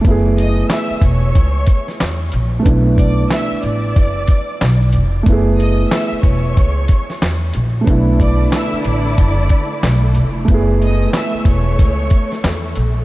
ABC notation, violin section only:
X:1
M:4/4
L:1/16
Q:"Swing 16ths" 1/4=92
K:Bm
V:1 name="Violin section"
z2 [^d^d']2 [ee']2 [cc']6- [cc'] z3 | z2 [dd']2 [ee']2 [dd']6- [dd'] z3 | z2 [^d^d']2 [ee']2 [cc']6- [cc'] z3 | z2 [dd']2 [ee']2 [dd']6- [dd'] z3 |
z2 [^d^d']2 [ee']2 [cc']6- [cc'] z3 |]